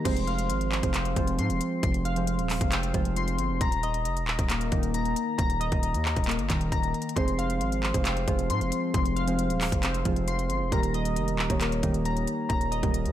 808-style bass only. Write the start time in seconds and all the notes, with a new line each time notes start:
0.05 F1
0.50 G#1
0.83 F1
1.16 F1
1.39 G#2
1.50 F1
1.83 F1
2.39 D#1
2.61 F1
2.94 F1
3.39 G1
3.50 F1
3.61 D#1
4.06 F1
4.22 D#1
4.39 D#1
4.72 D#1
5.39 D#1
5.72 D#1
5.94 D#2
6.16 D#1
6.39 G1
6.50 D#1
6.72 D#1
7.16 F1
7.61 G#1
7.94 F1
8.28 F1
8.50 G#2
8.61 F1
8.94 F1
9.50 D#1
9.72 F1
10.05 F1
10.50 G1
10.61 F1
10.72 D#1
11.16 F1
11.33 D#1
11.50 D#1
11.83 D#1
12.50 D#1
12.83 D#1
13.05 D#2